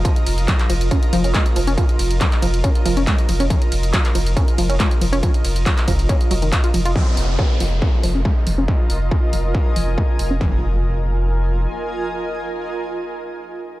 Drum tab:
RD |x-x-x-x-x-x-x-x-|x-x-x-x-x-x-x-x-|x-x-x-x-x-x---x-|x-x-x-x-x-x-x-x-|
HH |xxoxxxoxxxoxxxox|xxoxxxoxxxoxxxox|xxoxxxoxxxoxxxox|xxoxxxoxxxoxxxox|
CP |----xx------x---|----xx------x---|----xx------x---|----xx------x---|
BD |o---o---o---o---|o---o---o---o---|o---o---o---o---|o---o-o-o---o---|

RD |----------------|----------------|----------------|----------------|
HH |--o---o---o---o-|--o---o---o---o-|----------------|----------------|
CP |----------------|----------------|----------------|----------------|
BD |o---o---o---o---|o---o---o---o---|o---------------|----------------|